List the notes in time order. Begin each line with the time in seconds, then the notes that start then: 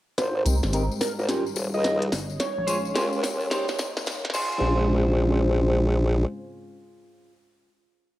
0.17 G#1 G#3 G4 C5, kick, snare, closed hi-hat, tambourine
0.45 C2 C4 D#4 G4 A#4, closed hi-hat, tambourine
0.63 G#1, snare, tambourine
0.73 C4 D#4 G4 A#4, closed hi-hat, tambourine
0.91 tambourine
1.01 A#4, kick, snare, open hi-hat, tambourine
1.19 G#1 A#4, tambourine
1.28 G3 C#4 D#4 F4 G4 A#4 C#5, snare, closed hi-hat, tambourine
1.47 tambourine
1.56 D#1, kick, tambourine
1.74 C#2 D#5, tambourine
1.84 snare, closed hi-hat, tambourine
2.02 closed hi-hat
2.12 G1, kick, snare, open hi-hat, tambourine
2.30 tambourine
2.40 G#3 C#4 C#5, kick, snare, closed hi-hat, tambourine
2.58 A#1
2.67 C#4 F4 G#4 C5, closed hi-hat, tambourine
2.85 tambourine
2.95 D#2 C#4 F4 G#4 C5, snare, closed hi-hat, tambourine
3.13 tambourine
3.23 kick, snare, open hi-hat, tambourine
3.41 tambourine
3.50 A#3 D#4 G4 A#4 C5, snare, closed hi-hat, tambourine
3.68 snare, tambourine
3.79 kick, snare, tambourine
3.97 snare, tambourine
4.06 snare, closed hi-hat, tambourine
4.24 kick, snare, closed hi-hat
4.30 C5, snare, tambourine
4.34 A#1 G#3 C#4 F4 G#4 C5, kick, snare, crash
4.52 tambourine